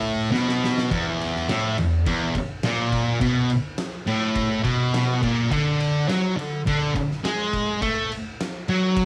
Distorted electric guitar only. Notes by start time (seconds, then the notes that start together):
Already playing: A2
0.31 B2
0.91 E2
1.49 A2
1.78 E2
2.07 E2
2.37 muted distorted electric guitar stroke
2.64 A#2
3.20 B2
4.07 A2
4.63 B2
5.23 A#2
5.52 D3
6.09 F#3
6.37 D3
6.67 D3
6.95 muted distorted electric guitar stroke
7.24 G#3
7.82 A3
8.69 F#3